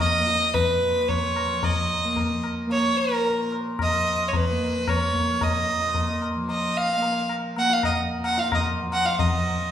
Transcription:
Already playing: tanpura A#2 F3 A#3
0.00 violin D#5
0.19 tanpura A#3
0.27 tabla te
0.54 violin B4, tabla tin, tabla ge
0.81 tanpura A#2
1.09 violin C#5, tabla tin, tabla ge
1.36 tabla na
1.43 tanpura F3
1.63 violin D#5, tabla tin, tabla ge
2.04 tanpura A#3
2.17 tabla tin, tabla ge
2.44 tabla na
2.67 tanpura A#3, tabla tin
2.72 violin C#5
2.97 violin A#4
3.25 tanpura A#2, tabla tin
3.52 tabla na
3.79 violin D#5, tabla na, tabla ge
3.89 tanpura F3
4.28 violin C#5
4.33 violin B4, tabla tin, tabla ge
4.50 tanpura A#3
4.88 violin C#5, tabla na, tabla ge
5.11 tanpura A#3, tabla ge
5.41 violin D#5, tabla tin, tabla ge
5.73 tanpura A#2
5.95 tabla tin, tabla ge
6.22 tabla na
6.36 tanpura F3
6.49 violin D#5, tabla tin
6.78 violin F5
6.97 tanpura A#3
7.02 tabla tin
7.29 tabla na
7.56 tanpura A#3, violin F#5, tabla na
7.70 violin F5, tabla te
7.83 violin D#5, tabla na, tabla ge
8.19 tanpura A#2
8.24 violin F#5, tabla na
8.38 violin F5, tabla te
8.52 violin D#5, tabla na, tabla ge
8.81 tanpura F3
8.92 violin F#5, tabla na
9.05 violin F5, tabla te
9.19 tanpura F3, violin D#5, tabla tin, tabla ge

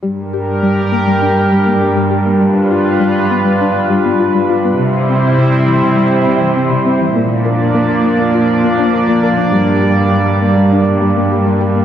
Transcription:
0.03 cello section G2, synth pluck G3, analog synth pad G3 D4 G4 A#4
0.33 synth pluck G4
0.63 synth pluck G3
0.92 synth pluck A#3
1.07 synth pluck G3
1.22 synth pluck D4
1.52 synth pluck G3
1.67 synth pluck A#3
1.81 synth pluck G4
1.96 synth pluck G3
2.10 synth pluck G4
2.25 synth pluck A#3
2.41 synth pluck G3, analog synth pad F4 B4
2.71 synth pluck F4
3.00 synth pluck G3
3.30 synth pluck B3
3.45 synth pluck G3
3.61 synth pluck D4
3.90 synth pluck G3
4.05 synth pluck B3
4.19 synth pluck F4
4.34 synth pluck G3
4.49 synth pluck F4
4.64 synth pluck B3
4.77 synth pluck C3, cello section C3, analog synth pad G3 C4 E4 C5
5.09 synth pluck C4
5.38 synth pluck C3
5.68 synth pluck E3
5.82 synth pluck C3
5.97 synth pluck G3
6.27 synth pluck C3
6.41 synth pluck E3
6.56 synth pluck C4
6.71 synth pluck C3
6.86 synth pluck C4
7.01 synth pluck E3
7.15 cello section A#2, analog synth pad F3 A#3 D4 D5, synth pluck A#3
7.45 synth pluck A#4
7.74 synth pluck A#3
8.05 synth pluck D4
8.19 synth pluck A#3
8.34 synth pluck F4
8.64 synth pluck A#3
8.78 synth pluck D4
8.93 synth pluck A#4
9.08 synth pluck A#3
9.23 synth pluck A#4
9.37 synth pluck D4
9.52 cello section G2, synth pluck G3, analog synth pad G3
9.82 synth pluck G4
10.12 synth pluck G3
10.42 synth pluck A#3
10.57 synth pluck G3
10.72 synth pluck D4
11.02 synth pluck G3
11.16 synth pluck A#3
11.32 synth pluck G4
11.46 synth pluck G3
11.61 synth pluck G4
11.75 synth pluck A#3

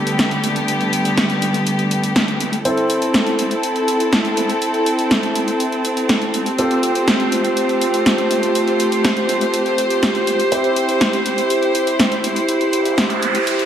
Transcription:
Already playing: string section D3 G3 A3 B3 G4, grand piano D4 G4 A4 B4
0.07 closed hi-hat
0.19 snare, closed hi-hat
0.31 closed hi-hat
0.44 closed hi-hat
0.56 closed hi-hat
0.68 closed hi-hat
0.81 closed hi-hat
0.93 closed hi-hat
1.05 closed hi-hat
1.17 snare, closed hi-hat
1.30 closed hi-hat
1.42 closed hi-hat
1.54 closed hi-hat
1.67 closed hi-hat
1.79 closed hi-hat
1.91 closed hi-hat
2.04 closed hi-hat
2.16 snare, closed hi-hat
2.28 closed hi-hat
2.40 closed hi-hat
2.53 closed hi-hat
2.65 grand piano C4 E4 A4 C5, string section C4 E4 A4, closed hi-hat
2.77 closed hi-hat
2.90 closed hi-hat
3.02 closed hi-hat
3.14 snare, closed hi-hat
3.27 closed hi-hat
3.39 closed hi-hat
3.51 closed hi-hat
3.63 closed hi-hat
3.76 closed hi-hat
3.88 closed hi-hat
4.00 closed hi-hat
4.13 snare, closed hi-hat
4.25 closed hi-hat
4.37 closed hi-hat
4.49 closed hi-hat
4.62 closed hi-hat
4.74 closed hi-hat
4.86 closed hi-hat
4.99 closed hi-hat
5.11 snare, closed hi-hat
5.23 closed hi-hat
5.35 closed hi-hat
5.48 closed hi-hat
5.60 closed hi-hat
5.72 closed hi-hat
5.85 closed hi-hat
5.97 closed hi-hat
6.09 snare, closed hi-hat
6.22 closed hi-hat
6.34 closed hi-hat
6.46 closed hi-hat
6.58 string section A3 F4 G4 C5, grand piano C4 F4 G4 A4, closed hi-hat
6.71 closed hi-hat
6.83 closed hi-hat
6.95 closed hi-hat
7.08 snare, closed hi-hat
7.20 closed hi-hat
7.32 closed hi-hat
7.45 closed hi-hat
7.57 closed hi-hat
7.69 closed hi-hat
7.81 closed hi-hat
7.94 closed hi-hat
8.06 snare, closed hi-hat
8.18 closed hi-hat
8.31 closed hi-hat
8.43 closed hi-hat
8.55 closed hi-hat
8.68 closed hi-hat
8.80 closed hi-hat
8.92 closed hi-hat
9.05 snare, closed hi-hat
9.17 closed hi-hat
9.29 closed hi-hat
9.41 closed hi-hat
9.54 closed hi-hat
9.66 closed hi-hat
9.78 closed hi-hat
9.90 closed hi-hat
10.03 snare, closed hi-hat
10.15 closed hi-hat
10.27 closed hi-hat
10.40 closed hi-hat
10.52 grand piano C4 E4 G4 C5, string section E4, closed hi-hat
10.64 closed hi-hat
10.76 closed hi-hat
10.89 closed hi-hat
11.01 snare, closed hi-hat
11.13 closed hi-hat
11.26 closed hi-hat
11.38 closed hi-hat
11.50 closed hi-hat
11.63 closed hi-hat
11.75 closed hi-hat
11.87 closed hi-hat
11.99 snare, closed hi-hat
12.12 closed hi-hat
12.24 closed hi-hat
12.36 closed hi-hat
12.49 closed hi-hat, noise sweep
12.61 closed hi-hat
12.73 closed hi-hat
12.85 closed hi-hat
12.98 snare, closed hi-hat
13.10 closed hi-hat
13.22 closed hi-hat
13.35 closed hi-hat
13.47 closed hi-hat
13.59 closed hi-hat

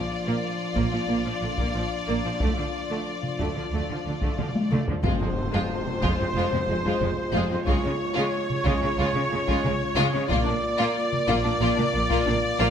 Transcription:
Already playing: french horn section F3 D4, violin section F4 D5
0.26 cello section A#2, viola section A#3
0.76 double bass section A#1, cello section A#2, viola section A#3, taiko
0.92 cello section A#2, viola section F3
1.08 double bass section A#1, cello section A#2, viola section A#3
1.25 cello section A#2, viola section F3
1.42 double bass section A#1, cello section A#2, viola section D3
1.58 cello section A#2, viola section A#3, taiko
1.74 double bass section A#1, cello section A#2, viola section F3
2.07 double bass section A#1, cello section A#2, viola section A#3
2.25 cello section A#2, viola section F3
2.40 double bass section D2, cello section D3, french horn section F3, viola section A3, taiko
2.57 cello section D3, viola section F3
2.90 cello section D3, viola section A3
3.23 taiko mid
3.39 double bass section D2, cello section D3, viola section A3, taiko
3.56 cello section D3, viola section F3
3.72 double bass section D2, cello section D3, viola section A3
3.90 cello section D3, viola section F3, taiko mid
4.05 double bass section D2, cello section D3, viola section D3
4.22 cello section D3, viola section A3, taiko
4.38 double bass section D2, cello section D3, viola section F3, taiko mid
4.55 taiko high
4.71 double bass section D2, cello section D3, viola section A3, taiko mid
4.87 cello section D3, viola section F3, taiko low
5.04 double bass section F1, cello section F2, french horn section G#3 F4, viola section G#3, violin section F4 C5, trumpet section C5, taiko, tam-tam, impact
5.21 cello section F2, viola section G#3, violin section C4
5.53 cello section F2, viola section G#3, violin section F4
5.87 taiko mid
6.02 double bass section F1, cello section F2, viola section G#3, violin section F4, taiko
6.19 cello section F2, viola section G#3, violin section C4
6.35 double bass section F1, cello section F2, viola section G#3, violin section F4
6.52 cello section F2, viola section G#3, violin section C4, taiko mid
6.69 double bass section F1, cello section F2, violin section G#3, viola section G#3
6.85 cello section F2, viola section G#3, violin section F4, taiko
7.00 double bass section F1, cello section F2, viola section G#3, violin section C4, taiko mid
7.33 double bass section F1, cello section F2, viola section G#3, violin section F4
7.50 cello section F2, viola section G#3, violin section C4
7.66 double bass section C#2, cello section C#3, viola section G#3, violin section F4 C#5, trumpet section C#5, taiko
7.83 cello section C#3, viola section G#3, violin section C#4
8.14 cello section C#3, violin section F4
8.18 viola section G#3
8.50 taiko mid
8.64 double bass section C#2, cello section C#3, viola section G#3, violin section F4, taiko
8.79 cello section C#3, violin section C#4
8.84 viola section G#3
8.97 double bass section C#2, cello section C#3, viola section G#3, violin section F4
9.13 cello section C#3, viola section G#3, violin section C#4, taiko mid
9.30 double bass section C#2, cello section C#3, violin section G#3, viola section G#3
9.47 cello section C#3, viola section G#3, violin section F4, taiko
9.64 double bass section C#2, cello section C#3, viola section G#3, violin section C#4, taiko mid
9.95 double bass section C#2, cello section C#3, viola section G#3, violin section F4
10.13 cello section C#3, viola section G#3, violin section C#4
10.28 double bass section A#1, cello section A#2, viola section A#3, french horn section A#3 F4, violin section F4 D5, trumpet section D5, taiko
10.45 cello section A#2, viola section A#3, violin section D4
10.78 cello section A#2, viola section A#3, violin section F4
11.13 taiko mid
11.28 double bass section A#1, cello section A#2, viola section A#3, violin section F4, taiko
11.44 cello section A#2, viola section A#3, violin section D4
11.61 double bass section A#1, cello section A#2, viola section A#3, violin section F4
11.76 cello section A#2, viola section A#3, violin section D4, taiko mid
11.92 double bass section A#1, cello section A#2, violin section A#3, viola section A#3
12.09 cello section A#2, viola section A#3, violin section F4, taiko
12.26 double bass section A#1, cello section A#2, viola section A#3, violin section D4, taiko mid
12.59 double bass section A#1, cello section A#2, viola section A#3, violin section F4

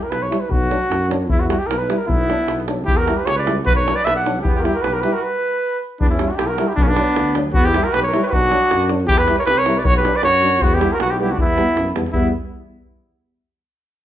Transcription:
0.02 trumpet A#4, davul high
0.10 tuba B1, trumpet B4, davul high
0.22 trumpet C#5
0.30 euphonium G3, trombone E4, davul high
0.40 trumpet B4
0.49 tuba B1, trumpet F#4, davul low
0.63 davul high
0.70 euphonium F#3, trombone D4, davul high
0.83 davul high
0.90 tuba F#2, davul high
1.10 euphonium F#3, trombone D4, davul high
1.29 tuba E2, trumpet E4, davul low
1.40 trumpet F#4, davul high
1.44 euphonium G3, trumpet E4 F#4
1.49 trombone E4, davul high
1.59 trumpet G4, davul high
1.67 tuba B1, trumpet A#4, davul high
1.78 trumpet B4
1.89 euphonium G3, trombone E4, davul high
1.98 trumpet A#4
2.06 tuba B1, flugelhorn B3, trumpet E4, davul low
2.21 davul high
2.28 euphonium F#3, trombone D4, davul high
2.41 davul high
2.48 tuba B1, davul high
2.60 davul high
2.68 euphonium F#3, trombone D4, davul high
2.85 tuba E2, flugelhorn E4, trumpet G4, davul low
2.96 flugelhorn F#4, trumpet A#4, davul high
3.07 euphonium G3, trombone E4, davul high
3.14 flugelhorn G4, trumpet B4
3.19 davul high
3.25 tuba C#2, flugelhorn G4, trumpet C#5, davul high
3.35 flugelhorn B4
3.39 trumpet D5
3.46 euphonium G3, trombone E4, davul high
3.64 tuba B1, flugelhorn F#4, trumpet B4, davul low
3.75 flugelhorn A#4, trumpet C#5, davul high
3.85 euphonium F#3, trombone D4, davul high
3.94 flugelhorn B4, trumpet D5
3.98 davul high
4.04 tuba B1, flugelhorn B4, trumpet E5, davul high
4.14 flugelhorn D5, trumpet F#5
4.25 euphonium F#3, trombone D4, davul high
4.41 tuba E2, flugelhorn E4, trumpet G4, davul low
4.46 flugelhorn B3
4.54 flugelhorn E4, trumpet G4, davul high
4.59 flugelhorn F#4, trumpet G4 A#4
4.63 euphonium G3, trombone E4, flugelhorn E4, davul high
4.74 flugelhorn F#4, trumpet A#4, davul high
4.82 tuba B1, flugelhorn G4, trumpet B4, davul high
4.93 flugelhorn F#4, trumpet A#4
5.01 euphonium G3, trombone E4, flugelhorn G4, trumpet B4, davul high
5.13 flugelhorn F#4, trumpet A#4
5.22 trumpet B4
6.00 tuba E2, flugelhorn B3, trumpet D4, davul low
6.10 flugelhorn C#4, trumpet E4, davul high
6.19 euphonium G3, trombone E4, davul high
6.29 flugelhorn D4, trumpet F#4, davul high
6.36 tuba B1, flugelhorn E4, trumpet G4, davul high
6.47 flugelhorn F#4, trumpet A#4
6.58 euphonium G3, trombone E4, davul high
6.67 flugelhorn E4, trumpet G4
6.75 tuba B1, flugelhorn B3, trumpet D4, davul low
6.83 flugelhorn A#3, trumpet C#4
6.88 trumpet D4, davul high
6.92 flugelhorn B3
6.96 euphonium F#3, trombone D4, davul high
7.07 davul high
7.16 tuba D2, davul high
7.35 euphonium F#3, trombone D4, davul high
7.54 tuba E2, flugelhorn B3, trumpet F#4, davul low
7.65 flugelhorn E4, trumpet G4, davul high
7.74 euphonium G3, trombone E4, davul high
7.84 flugelhorn F#4, trumpet A#4, davul high
7.93 tuba B1, flugelhorn G4, trumpet B4, davul high
8.03 trumpet C#5
8.07 flugelhorn A#4
8.12 euphonium G3, trombone E4, davul high
8.23 flugelhorn G4, trumpet B4 C#5
8.28 tuba B1, trumpet F#4 B4, flugelhorn A#4
8.33 flugelhorn D4, davul low
8.51 euphonium F#3, trombone D4, davul high
8.63 davul high
8.71 tuba F#2, davul high
8.81 davul high
8.89 euphonium F#3, trombone D4, davul high
9.00 davul high
9.08 tuba E2, flugelhorn E4, trumpet G4, davul low
9.18 flugelhorn G4, trumpet B4, davul high
9.28 euphonium G3, trombone E4, davul high
9.39 flugelhorn A#4, trumpet C#5, davul high
9.46 tuba C2, flugelhorn G4, trumpet B4, davul high
9.58 flugelhorn A#4, trumpet C#5
9.66 euphonium G3, trombone E4, davul high
9.77 flugelhorn B4, trumpet D5
9.85 tuba B1, flugelhorn F#4, trumpet C#5, davul low
9.96 flugelhorn G4, trumpet B4, davul high
10.04 euphonium F#3, trombone D4, davul high
10.15 flugelhorn B4, trumpet D5, davul high
10.22 tuba F#2, flugelhorn F#4, trumpet C#5, davul high
10.42 euphonium F#3, trombone D4
10.61 tuba E2, flugelhorn B3, trumpet F#4, davul low
10.72 flugelhorn E4, trumpet G4, davul high
10.79 euphonium G3, trombone B3, davul high
10.92 flugelhorn F#4, trumpet A#4, davul high
10.99 tuba B1, trumpet F#4, davul high
11.04 flugelhorn B3
11.11 flugelhorn E4, trumpet G4
11.19 euphonium G3, trombone B3, flugelhorn E4, trumpet G4
11.31 flugelhorn D4, trumpet F#4
11.37 tuba E2, trumpet E4, davul low
11.41 flugelhorn B3
11.56 euphonium G3, trombone B3, davul high
11.69 davul high
11.75 tuba F#2, davul high
11.88 davul high
11.94 tuba E2, euphonium G3, trombone B3, davul high
12.06 davul high
12.12 tuba E2, euphonium G3, trombone B3, flugelhorn B3, trumpet E4, davul low

